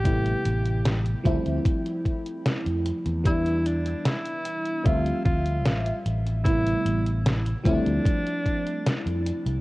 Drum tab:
HH |xxxxxxxxxxxxxxxx|xxxxxxxxxxxxxxxx|xxxxxxxxxxxxxxxx|
SD |----o-------o---|----o-------o---|----o-------o---|
BD |o-----o-o-o-----|o-------o-o-----|o-----o-o-o-----|